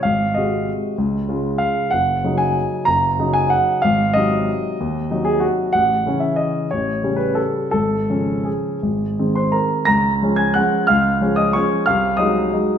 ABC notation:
X:1
M:3/4
L:1/8
Q:1/4=185
K:Db
V:1 name="Grand piano"
f2 e4- | e3 z f2 | g3 a3 | b3 a g2 |
f2 e4- | e3 A G2 | g3 =e _e2 | ^c3 _c =A2 |
=A4 _A2- | A3 [cc'] [Bb]2 | [bb']3 [aa'] [gg']2 | [ff']3 [ee'] [dd']2 |
[ff']2 [ee']4 |]
V:2 name="Grand piano" clef=bass
A,,,2 [C,A,G]4 | D,,2 [D,A,F]4 | G,,,2 [D,G,E]4 | G,,,2 [D,G,E]4 |
A,,,2 [C,G,E]4 | E,,2 [C,G,E]4 | =A,,,2 [^C,=E,^C]4 | =A,,,2 [^C,=G,^C]4 |
A,,,2 [D,F,D]4 | A,,,2 [E,A,C]4 | D,,2 [F,A,D]2 [F,A,D]2 | D,,2 [F,A,D]2 [F,A,D]2 |
C,,2 [G,A,E]2 [G,A,E]2 |]